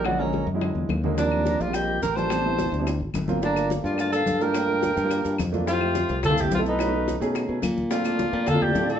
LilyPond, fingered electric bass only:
\new Staff \with { instrumentName = "Fingered electric bass" } { \clef bass \time 4/4 \key g \minor \tempo 4 = 214 bes,,4. fis,4 e,8 ees,4~ | ees,4. bes,,4. a,,4~ | a,,4. d,4 aes,,8 g,,4~ | g,,4. g,4. g,4~ |
g,4. g,4 g,8 f,4~ | f,4. c,4. b,,4~ | b,,4. b,4 b,8 bes,4~ | bes,4. bes,4. a,4 | }